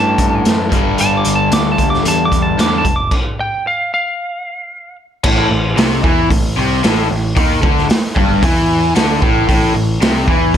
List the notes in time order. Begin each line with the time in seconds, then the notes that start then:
Already playing: G2 A2 E3 A3 A5
0.18 G2, kick, closed hi-hat
0.45 F#2, snare, closed hi-hat
0.69 G1 G2 D3, kick, closed hi-hat
0.74 G3
0.98 G1 A5, closed hi-hat
1.17 D6
1.25 G1, closed hi-hat
1.35 A5
1.51 D2 D6, snare, closed hi-hat
1.72 A5
1.78 D2, kick, closed hi-hat
1.90 D6, snare
2.05 E2 A5, closed hi-hat
2.25 D6
2.32 E2, kick, closed hi-hat
2.42 A5
2.58 E2 G2 D3 G3 D6, snare, closed hi-hat
2.78 A5
2.85 F1, kick, closed hi-hat
2.96 D6
3.11 kick, crash
3.40 G5
3.67 F5
3.94 F5
5.24 A1 A2, kick, crash
5.51 A1 A2
5.77 C2 C3, snare, open hi-hat
6.04 E2 E3, kick
6.30 A1 A2, kick, open hi-hat
6.57 C2 C3
6.84 A1 A2, snare, open hi-hat
7.10 A1 A2
7.36 D#2 D#3, kick, open hi-hat
7.62 D2 D3, kick
7.78 snare
7.90 muted overdriven electric guitar stroke, muted picked electric bass stroke, snare, open hi-hat
8.16 G1 G2, kick
8.43 E2 E3, kick, open hi-hat
8.95 D2 D3, snare, open hi-hat
9.22 A1 A2, kick
9.49 A1 A2, kick, open hi-hat
9.75 A1 A2
10.02 C2 C3, snare, open hi-hat
10.28 E2 E3, kick